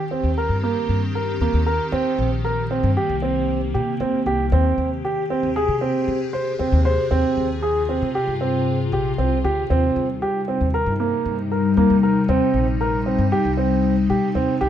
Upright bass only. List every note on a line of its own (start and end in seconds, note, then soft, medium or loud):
0.23 0.48 D#2 medium
0.49 0.74 G2 medium
0.89 1.38 G2 medium
1.40 1.53 D#2 medium
1.54 1.78 D#2 medium
1.92 2.05 D#2 medium
2.18 2.80 A#1 medium
2.83 2.96 G2 medium
3.10 3.76 C2 medium
3.75 3.99 C3 medium
4.00 4.12 D#2 medium
4.26 4.51 C2 medium
4.52 4.77 D#2 medium
4.78 5.03 D#2 medium
5.43 5.68 D#2 medium
5.69 5.93 C3 medium
6.08 6.57 C3 medium
6.60 6.72 D#2 medium
6.72 6.97 D#2 medium
7.11 7.24 D#2 medium
7.37 7.99 D#2 medium
8.02 8.14 C3 medium
8.28 8.92 G2 medium
8.92 9.16 A#1 medium
9.18 9.42 C2 medium
9.44 9.68 D2 medium
9.70 9.95 D#2 medium
9.96 10.21 D#2 medium
10.61 10.85 D#2 medium
10.86 11.11 G2 medium
11.25 11.74 G2 medium
11.77 11.89 D#2 medium
11.90 12.15 D#2 medium
12.28 12.41 D#2 medium
12.54 13.15 A#1 medium
13.19 13.31 G2 medium
13.45 14.11 C2 medium
14.10 14.34 C3 medium
14.35 14.48 D#2 medium
14.61 14.69 C2 medium